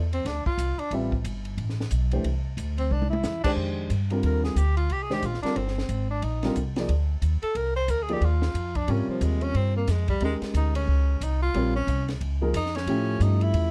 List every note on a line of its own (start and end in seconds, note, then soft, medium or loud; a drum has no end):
0.00 0.25 E2 loud
0.13 0.28 C4 medium
0.13 ride soft
0.25 0.45 D2 medium
0.25 0.46 D4 medium
0.25 snare soft
0.25 ride medium
0.46 0.81 F4 medium
0.46 muted upright bass stroke soft
0.46 kick medium
0.58 0.77 C2 medium
0.58 hi-hat pedal medium
0.58 ride medium
0.78 0.92 D4 medium
0.78 muted upright bass stroke soft
0.78 ride medium
0.91 1.24 A1 medium
0.91 1.11 G3 medium
0.91 1.11 C4 medium
0.91 1.11 F4 medium
0.91 1.11 B4 medium
0.91 1.11 E5 medium
0.91 ride medium
1.12 kick medium
1.24 1.57 G1 loud
1.24 hi-hat pedal medium
1.24 ride medium
1.45 ride soft
1.57 1.90 A1 medium
1.57 ride medium
1.69 snare soft
1.80 snare medium
1.91 2.24 B1 medium
1.91 hi-hat pedal medium
1.91 ride medium
2.11 2.24 E3 medium
2.11 2.24 A3 medium
2.11 2.24 D4 medium
2.11 2.24 G4 medium
2.11 2.24 C5 medium
2.11 ride medium
2.24 2.56 C2 medium
2.24 ride medium
2.57 2.90 D2 loud
2.57 hi-hat pedal medium
2.57 ride medium
2.78 2.94 C4 medium
2.78 ride medium
2.91 3.23 C2 medium
2.91 3.09 D4 medium
2.91 mid tom medium
3.02 mid tom medium
3.10 3.41 E4 medium
3.10 mid tom medium
3.23 3.43 E2 loud
3.23 snare medium
3.23 hi-hat pedal medium
3.44 3.88 D#3 medium
3.44 3.88 G#3 medium
3.44 3.52 D4 loud
3.44 3.88 D4 medium
3.44 3.88 G4 medium
3.44 3.88 C5 medium
3.44 muted upright bass stroke soft
3.44 kick medium
3.44 crash medium
3.56 3.89 F2 medium
3.90 4.22 G2 medium
3.90 hi-hat pedal soft
3.90 ride medium
4.10 4.54 D3 medium
4.10 4.54 G3 medium
4.10 4.54 C4 medium
4.10 4.54 F4 medium
4.10 4.55 A#4 medium
4.10 ride soft
4.23 4.55 D#2 medium
4.23 4.43 A#4 medium
4.23 ride medium
4.44 4.59 G#4 medium
4.44 snare soft
4.56 4.88 D2 medium
4.56 4.76 G4 medium
4.56 hi-hat pedal medium
4.56 ride medium
4.77 4.93 F4 medium
4.77 ride soft
4.89 5.22 C2 medium
4.89 5.04 G4 medium
4.89 ride medium
5.03 5.15 G#4 medium
5.10 5.22 D#3 medium
5.10 5.22 G#3 medium
5.10 5.22 D4 medium
5.10 5.22 G4 medium
5.10 5.27 G4 medium
5.10 5.22 C5 medium
5.10 snare soft
5.22 5.42 A#1 loud
5.22 5.42 F4 medium
5.22 hi-hat pedal soft
5.22 ride medium
5.34 snare soft
5.42 5.55 D3 medium
5.42 5.55 G3 medium
5.42 5.56 C4 medium
5.42 5.59 D4 medium
5.42 5.55 F4 medium
5.42 5.56 A#4 medium
5.42 muted upright bass stroke soft
5.42 snare soft
5.42 ride medium
5.56 5.88 G1 medium
5.56 6.10 C4 medium
5.56 ride medium
5.68 snare soft
5.78 snare soft
5.89 6.21 G#1 medium
5.89 hi-hat pedal medium
5.89 ride medium
6.10 6.25 D4 medium
6.22 6.55 A#1 medium
6.22 6.56 D#4 medium
6.22 ride medium
6.43 6.55 D3 medium
6.43 6.55 G3 medium
6.43 6.55 C4 medium
6.43 6.55 F4 medium
6.43 6.56 A#4 medium
6.43 snare medium
6.43 ride soft
6.56 6.88 C2 medium
6.56 hi-hat pedal soft
6.56 ride medium
6.76 6.88 F3 medium
6.76 6.88 A#3 medium
6.76 6.88 D#4 medium
6.76 6.88 G#4 medium
6.76 6.88 D5 medium
6.76 snare medium
6.76 ride soft
6.89 7.21 D2 medium
6.89 ride medium
7.22 7.41 D#2 medium
7.22 hi-hat pedal medium
7.22 ride medium
7.43 7.57 A4 loud
7.43 muted upright bass stroke soft
7.43 ride medium
7.55 7.88 C2 medium
7.55 7.76 A#4 medium
7.55 ride medium
7.76 7.92 C5 loud
7.88 8.20 D2 loud
7.88 8.04 A#4 medium
7.88 hi-hat pedal medium
7.88 ride medium
8.02 8.15 G#4 medium
8.09 8.21 F3 medium
8.09 8.21 A#3 medium
8.09 8.21 D#4 medium
8.09 8.21 G#4 medium
8.09 8.21 D5 medium
8.09 ride soft
8.13 8.26 G4 medium
8.21 8.54 D#2 medium
8.21 8.78 F4 medium
8.21 ride medium
8.42 snare medium
8.54 8.87 F2 medium
8.54 hi-hat pedal medium
8.54 ride medium
8.75 8.92 D4 medium
8.75 kick soft
8.75 ride medium
8.88 9.07 G#2 medium
8.88 9.81 C3 medium
8.88 9.80 G3 medium
8.88 9.09 C#4 medium
8.88 9.81 F4 medium
8.88 9.81 A#4 medium
8.88 9.81 C#5 medium
8.88 ride medium
9.08 9.25 F3 medium
9.08 muted upright bass stroke soft
9.21 9.54 D#2 loud
9.21 9.45 G#3 medium
9.21 hi-hat pedal medium
9.21 ride medium
9.41 9.58 C#4 loud
9.41 ride soft
9.54 9.87 G2 medium
9.54 9.76 C4 medium
9.54 ride medium
9.77 9.92 A#3 medium
9.88 10.20 F2 medium
9.88 10.09 G#3 medium
9.88 snare soft
9.88 hi-hat pedal medium
9.88 ride medium
10.08 10.21 G3 medium
10.08 kick medium
10.08 ride medium
10.20 10.40 D#2 medium
10.20 11.14 G#3 medium
10.20 10.36 G#3 medium
10.20 11.14 C#4 medium
10.20 11.14 D#4 medium
10.20 11.14 G4 medium
10.20 11.14 A#4 medium
10.20 ride medium
10.41 muted upright bass stroke soft
10.41 snare soft
10.41 ride soft
10.54 10.87 D2 loud
10.54 10.75 D#4 medium
10.54 hi-hat pedal medium
10.54 ride medium
10.75 11.25 C#4 medium
10.75 ride medium
10.87 11.20 C#2 medium
11.21 11.53 C2 medium
11.21 11.42 D#4 medium
11.21 hi-hat pedal medium
11.21 ride medium
11.42 11.73 F4 loud
11.54 11.87 A#1 medium
11.54 11.73 G3 medium
11.54 11.73 C4 medium
11.54 11.73 F4 medium
11.54 11.73 A#4 medium
11.54 11.73 C#5 medium
11.54 ride medium
11.76 12.07 C#4 loud
11.87 12.20 C2 loud
11.87 hi-hat pedal medium
11.87 ride medium
12.08 snare soft
12.08 ride soft
12.21 12.53 C#2 medium
12.21 ride medium
12.41 12.53 F3 medium
12.41 12.53 A#3 medium
12.41 12.53 D#4 medium
12.41 12.53 G#4 medium
12.41 12.53 A#4 medium
12.54 12.86 F2 medium
12.54 12.77 D#4 loud
12.54 hi-hat pedal medium
12.54 ride medium
12.66 snare soft
12.75 13.24 C#4 loud
12.75 snare medium
12.75 ride medium
12.87 13.19 A2 medium
12.87 13.71 F3 medium
12.87 13.71 A3 medium
12.87 13.71 C#4 medium
12.87 13.71 E4 medium
12.87 13.71 G4 medium
12.87 ride medium
13.20 13.53 G2 loud
13.20 13.44 D#4 medium
13.20 hi-hat pedal medium
13.20 ride medium
13.41 13.71 E4 loud
13.41 ride soft
13.53 13.71 E2 medium
13.53 ride medium